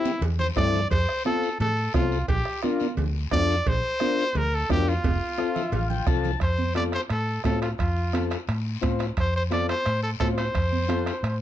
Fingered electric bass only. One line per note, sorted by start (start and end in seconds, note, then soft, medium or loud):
0.21 0.49 E2 loud
0.57 0.84 G2 medium
0.91 1.05 F2 medium
1.60 1.87 A2 loud
1.94 2.22 C2 medium
2.28 2.42 A#1 medium
2.97 3.25 D2 loud
3.32 3.59 F2 medium
3.66 3.80 A#1 loud
4.35 4.63 D2 loud
4.70 4.97 F2 loud
5.04 5.18 F1 medium
5.72 6.00 A1 medium
6.07 6.34 C2 medium
6.41 6.96 F2 medium
7.10 7.38 A2 medium
7.45 7.72 A2 loud
7.79 8.34 F2 medium
8.48 8.76 A2 medium
8.83 9.10 A2 loud
9.17 9.73 F2 medium
9.86 10.14 A2 medium
10.20 10.48 A2 loud
10.55 11.10 F2 medium
11.23 11.41 A2 medium